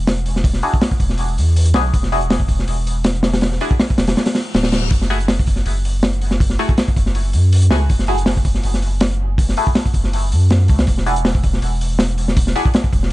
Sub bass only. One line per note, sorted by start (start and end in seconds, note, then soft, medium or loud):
0.00 0.61 E1 loud
1.00 1.39 E1 medium
1.38 1.73 E2 medium
1.75 1.92 B1 medium
1.94 2.48 E1 medium
2.48 2.66 E1 medium
2.68 3.60 E1 loud
3.98 4.15 E1 medium
4.54 4.90 D1 medium
4.91 5.46 F#1 medium
5.47 5.64 F#1 medium
5.66 6.58 F#1 loud
6.96 7.35 F#1 medium
7.34 7.70 F#2 medium
7.71 7.88 C#2 medium
7.90 8.44 F#1 medium
8.45 8.62 F#1 medium
8.64 9.56 F#1 loud
9.94 10.34 F#1 medium
10.32 10.68 F#2 medium
10.69 10.86 C#2 medium
10.88 11.42 E1 loud
11.44 11.61 E1 medium
11.62 12.54 E1 loud
12.93 13.13 E1 medium